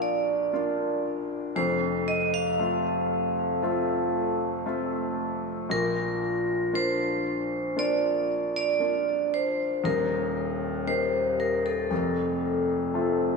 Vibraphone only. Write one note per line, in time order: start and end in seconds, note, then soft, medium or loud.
0.02 1.01 D5 medium
1.56 1.79 C5 medium
2.08 2.34 D#5 loud
2.34 4.37 F5 loud
5.71 6.77 A#4 medium
6.75 7.74 C5 medium
7.79 8.51 D5 loud
8.56 9.35 D5 loud
9.34 9.81 C5 medium
9.85 10.84 A#4 medium
10.88 11.35 C5 medium
11.40 11.66 A#4 medium
11.66 12.91 A4 medium